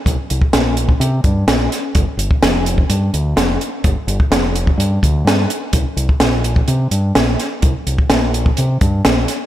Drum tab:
HH |x-x-x-x-x-x-x-x-|x-x-x-x-x-x-x-x-|x-x-x-x-x-x-x-x-|x-x-x-x-x-x-x-x-|
SD |----o-------o-o-|----o-------o---|----o-------o---|----o-------o-o-|
BD |o--o---o--o-----|o--o---o--------|o--o---o--o-----|o--o---o--------|

HH |x-x-x-x-x-x-x-x-|
SD |----o-------o-o-|
BD |o--o---o--o-----|